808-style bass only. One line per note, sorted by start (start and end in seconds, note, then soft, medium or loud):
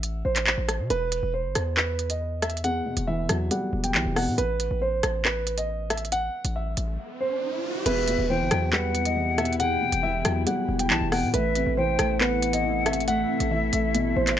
0.00 0.23 A1 loud
0.25 0.56 A1 loud
0.58 0.81 A1 loud
0.79 0.90 C3 loud
0.90 1.22 E1 loud
1.23 1.46 E1 loud
1.45 1.55 G1 loud
1.55 2.82 E2 loud
2.97 3.28 E1 loud
3.29 3.50 E2 loud
3.73 3.96 E1 loud
3.95 4.05 B1 loud
4.05 4.29 E1 loud
4.27 4.38 B2 loud
4.38 4.69 A1 loud
4.71 5.02 A1 loud
5.03 6.30 A1 loud
6.45 6.76 A1 loud
6.77 6.98 A1 loud
7.86 8.17 E1 loud
8.19 8.42 E1 loud
8.40 8.51 G1 loud
8.51 9.78 E2 loud
9.92 10.24 E1 loud
10.25 10.46 E2 loud
10.69 10.92 E1 loud
10.90 11.01 B1 loud
11.01 11.24 E1 loud
11.23 11.33 B2 loud
11.34 11.65 A1 loud
11.66 11.98 A1 loud
11.99 13.25 A1 loud
13.40 13.72 A1 loud
13.73 14.15 A1 loud
14.16 14.39 A1 loud